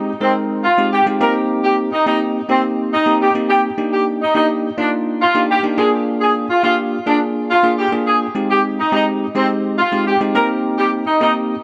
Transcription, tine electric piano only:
Already playing: G#3 C4 D#4 G4
0.21 G#3 C4 D#4 A#4
0.78 G#3 C4 D#4 G4
1.06 G#3 C4 D#4 G4
1.21 A#3 C4 D#4 G4
2.06 A#3 C4 D#4 G4
2.49 A#3 C4 D#4 G4
3.06 A#3 C4 D#4 G4
3.35 A#3 C4 D#4 G4
3.78 A#3 D4 D#4 G4
4.35 A#3 D4 D#4 G4
4.78 A#3 D4 D#4 F4
5.35 A#3 D4 D#4 G4
5.63 A#3 D4 D#4 G4
5.78 A#3 D4 F4 G#4
6.63 A#3 D4 F4 G4
7.06 A#3 D4 F4 G#4
7.63 A#3 D4 F4 G#4
7.92 A#3 D4 F4 G#4
8.35 G#3 C4 D#4 G4
8.92 G#3 C4 D#4 G4
9.35 G#3 C4 D#4 G4
9.92 G#3 C4 D#4 G4
10.21 G#3 C4 D#4 G4
10.35 A#3 C4 D#4 G4
11.21 A#3 C4 D#4 G4

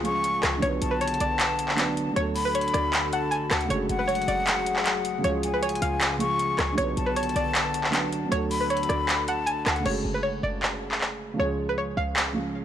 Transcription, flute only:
0.05 C#6
0.81 A5
2.35 B5
3.12 A5
3.52 F#5
3.90 F#5
5.43 G#5
6.20 C#6
6.97 A5
8.51 B5
9.28 A5
9.67 F#5

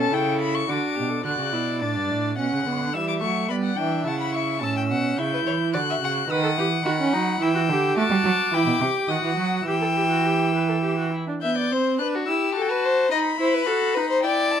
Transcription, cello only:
Already playing: B2
0.12 C#3
0.69 D3
0.97 B2
1.24 D3
1.39 C#3
1.53 B2
1.81 A2
1.96 G2
2.11 A2
2.38 B2
2.53 C#3
2.66 D3
2.95 E3
3.24 F#3
3.51 G3
3.79 E3
4.07 C#3
4.63 A2
4.91 B2
5.19 C#3
5.46 E3
5.75 D3
6.02 C#3
6.30 D#3
6.57 E3
6.85 D#3
7.14 F#3
7.41 E3
7.69 D3
7.96 A3
8.10 G3
8.24 F#3
8.52 E3
8.66 B2
8.80 C3
9.08 D#3
9.23 E3
9.37 F#3
9.67 E3

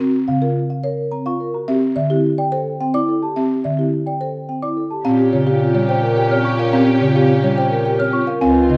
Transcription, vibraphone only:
0.00 F#4
0.28 C4
0.42 F4
0.84 A#4
1.12 C4
1.26 F4
1.40 A#4
1.54 F#4
1.68 G4
1.96 C4
2.10 E4
2.52 A4
2.80 C4
2.94 E4
3.08 A4
3.22 G4
3.36 G4
3.64 C4
3.78 E4
4.21 A4
4.49 C4
4.63 E4
4.77 A4
4.91 G4
5.05 G4
5.19 G4
5.32 F4
5.47 C4
5.60 F4
6.03 A#4
6.17 G4
6.31 C4
6.45 F4
6.59 A#4
6.73 G4
6.87 G4
7.01 F4
7.15 C4
7.29 F4
7.71 A#4
7.85 G4
7.99 C4
8.13 F4
8.27 A#4
8.41 F4
8.55 F4
8.69 D#4

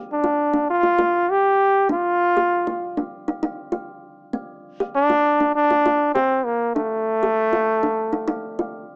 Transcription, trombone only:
0.13 D4
0.70 F4
1.31 G4
1.91 F4
4.95 D4
5.56 D4
6.14 C4
6.45 A#3
6.75 A3

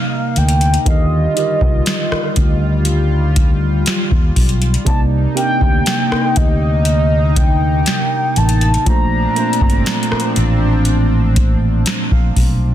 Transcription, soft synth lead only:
Already playing: F5
0.38 G5
0.88 D#5
4.87 A5
5.36 G5
6.37 D#5
7.37 G5
8.37 A5
8.88 A#5

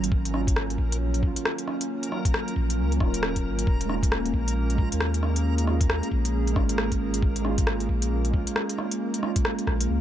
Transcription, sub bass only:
Already playing: G#1
0.78 A#1
2.56 A#1
2.79 C#2
3.01 D#1
3.45 G#1
3.67 D#1
4.34 A#1
4.93 D#2
6.11 A#1
6.56 G#1
7.89 A#1
9.67 A#1
9.90 C#2

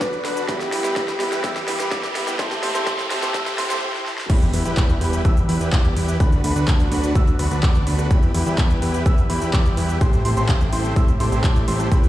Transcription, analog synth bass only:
4.30 E2
4.54 E2
4.65 E2
4.77 E2
5.01 E2
5.25 E2
5.49 E2
5.61 E2
5.73 E2
5.96 E2
6.20 D2
6.44 D2
6.56 D2
6.68 D2
6.92 D2
7.15 D2
7.39 D2
7.51 D2
7.63 D2
7.87 D2
8.11 E2
8.34 E2
8.46 E2
8.58 E2
8.82 E2
9.06 E2
9.30 E2
9.42 E2
9.54 E2
9.77 E2
10.01 A1
10.25 A1
10.37 A1
10.49 A1
10.73 A1
10.96 A1
11.20 A1
11.32 A1
11.44 A2
11.68 A1
11.92 E2

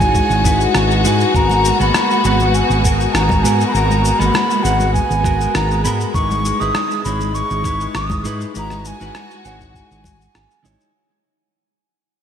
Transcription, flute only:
Already playing: G#5
1.06 G#5
1.36 A#5
1.82 B5
2.26 F#5
2.55 G#5
3.14 A#5
3.43 G#5
3.67 B5
3.73 A#5
4.19 B5
4.63 F#5
4.93 G#5
5.55 A#5
5.84 B5
6.14 C#6
6.60 D#6
7.04 B5
7.34 C#6
7.96 D#6
8.58 A#5
8.79 A#5
8.87 G#5
9.45 F#5
9.75 G#5

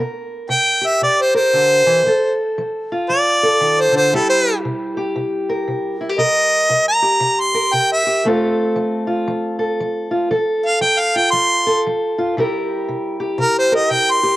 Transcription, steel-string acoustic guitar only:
Already playing: C3
0.00 A#4
0.49 C3
0.81 G4
1.02 C3
1.35 A#4
1.53 D3
1.86 E3
2.06 F3 A4
2.58 F3
2.92 F4
3.09 F3
3.43 A4
3.61 D#3
3.92 D3
4.13 C3 G3 E4 G4
4.65 C3
4.97 G4
5.16 C3
5.49 A#4
5.68 C3
6.01 E4
6.09 G4
6.18 C3 A#4
6.70 C3
7.02 G4
7.20 C3
7.54 A#4
7.73 C3
8.07 G4
8.25 F3 A3 C4 F4 A4
8.76 F3
9.07 F4
9.28 F3
9.59 A4
9.80 F3
10.11 F4
10.31 F3 A4
10.81 F3
11.16 F4
11.33 F3
11.67 A4
11.87 F3
12.18 F4
12.37 C3 G3 E4 G4 A#4
12.88 C3
13.20 G4
13.38 C3
13.72 A#4
13.90 C3
14.23 G4

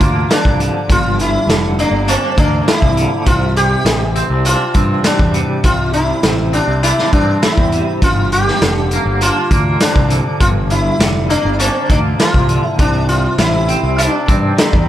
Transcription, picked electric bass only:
0.00 D2
0.45 C2
0.89 G1
1.47 F1
1.91 G1
2.37 D2
2.82 C2
3.27 C2
3.85 A1
4.30 C2
4.75 G2
5.19 E2
5.64 C2
6.23 A1
6.68 C2
7.13 G2
7.57 E2
8.02 G1
8.61 F1
9.05 G1
9.51 D2
9.95 C2
10.41 G1
10.99 F1
11.45 G1
11.89 D2
12.34 C2
12.79 C2
13.38 A1
13.83 C2
14.28 G2
14.73 E2

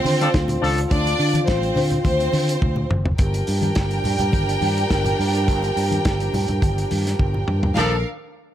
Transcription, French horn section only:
Already playing: D3 C4 F4
3.19 F3 A#3 G4
7.77 D3 A#3 A4

